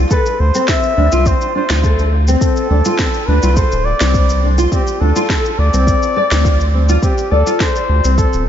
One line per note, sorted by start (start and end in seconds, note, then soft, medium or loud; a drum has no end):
0.11 0.25 A4 medium
0.11 0.42 B4 medium
0.11 kick loud
0.11 shaker medium
0.26 shaker soft
0.39 0.51 D2 medium
0.39 0.70 C5 medium
0.55 0.96 C4 medium
0.55 shaker medium
0.68 1.29 E5 loud
0.68 kick medium
0.68 snare medium
0.68 shaker medium
0.83 shaker soft
0.97 1.09 D2 medium
0.97 1.06 D4 medium
1.12 1.34 C2 medium
1.12 1.25 F4 loud
1.12 shaker medium
1.26 1.35 C4 medium
1.26 1.55 C5 medium
1.26 kick loud
1.26 shaker medium
1.41 shaker soft
1.55 1.64 D4 medium
1.55 2.09 C5 medium
1.70 2.36 D2 medium
1.70 1.82 F4 medium
1.70 snare medium
1.70 shaker medium
1.84 1.98 A4 medium
1.84 kick loud
1.84 shaker medium
1.99 shaker soft
2.28 2.69 C4 medium
2.28 shaker medium
2.41 3.28 A4 medium
2.41 kick loud
2.41 shaker medium
2.56 shaker soft
2.70 2.82 D2 loud
2.70 2.79 D4 medium
2.85 2.98 F4 loud
2.85 shaker medium
2.99 3.08 C4 medium
2.99 kick medium
2.99 snare medium
2.99 shaker medium
3.14 shaker soft
3.27 3.39 D2 loud
3.27 3.37 D4 medium
3.27 3.57 B4 medium
3.43 3.65 C2 medium
3.43 3.55 F4 loud
3.43 shaker medium
3.56 3.71 A4 medium
3.56 3.87 C5 medium
3.56 kick loud
3.56 shaker medium
3.72 3.94 D1 medium
3.72 shaker soft
3.85 4.43 D5 loud
4.00 4.67 C2 medium
4.00 4.42 C4 medium
4.00 snare medium
4.00 shaker medium
4.14 kick loud
4.14 shaker medium
4.29 shaker soft
4.43 4.52 D4 medium
4.58 4.71 F4 loud
4.58 shaker medium
4.72 4.80 C4 medium
4.72 5.02 G4 medium
4.72 kick loud
4.72 shaker medium
4.87 shaker soft
5.00 5.12 D2 loud
5.00 5.09 D4 medium
5.00 5.60 A4 medium
5.16 5.28 F4 medium
5.16 shaker medium
5.29 5.44 A4 medium
5.29 kick medium
5.29 snare medium
5.29 shaker soft
5.45 shaker soft
5.58 5.70 D2 loud
5.58 6.74 D5 loud
5.73 5.95 C2 medium
5.73 6.15 C4 medium
5.73 shaker medium
5.87 kick loud
5.87 shaker soft
6.03 shaker soft
6.16 6.30 D5 medium
6.31 6.98 D2 medium
6.31 6.44 C4 medium
6.31 snare medium
6.31 shaker medium
6.45 6.59 F4 medium
6.45 kick loud
6.45 shaker medium
6.60 shaker soft
6.74 6.82 C4 medium
6.89 6.97 F4 medium
6.89 shaker medium
7.03 7.11 C4 medium
7.03 7.33 G4 medium
7.03 kick loud
7.03 shaker soft
7.18 shaker soft
7.31 7.43 D2 loud
7.31 7.62 A4 medium
7.31 7.46 D5 medium
7.46 7.59 F4 medium
7.46 shaker medium
7.60 7.75 A4 medium
7.60 8.17 C5 loud
7.60 kick medium
7.60 snare medium
7.60 shaker soft
7.76 shaker soft
7.89 8.01 D2 medium
8.04 8.26 C2 medium
8.04 8.45 C4 medium
8.04 shaker medium
8.17 8.45 A4 medium
8.17 kick loud
8.17 shaker medium
8.33 8.49 D1 medium
8.33 shaker soft